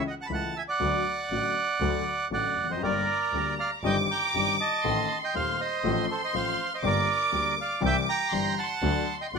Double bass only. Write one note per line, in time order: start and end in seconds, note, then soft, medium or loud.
0.29 0.51 C#2 medium
0.80 1.02 D2 medium
1.30 1.51 A1 soft
1.80 2.02 D2 medium
2.31 2.52 A1 soft
2.57 2.81 F1 soft
2.82 3.03 G1 medium
3.32 3.54 D2 soft
3.83 4.04 G1 medium
4.34 4.55 G1 medium
4.85 5.05 A1 medium
5.35 5.55 D#2 soft
5.84 6.05 A1 medium
6.34 6.55 A1 soft
6.84 7.04 G1 medium
7.33 7.54 D2 soft
7.82 8.03 C2 medium
8.32 8.53 G1 soft
8.82 9.03 D2 medium
9.33 9.39 A1 medium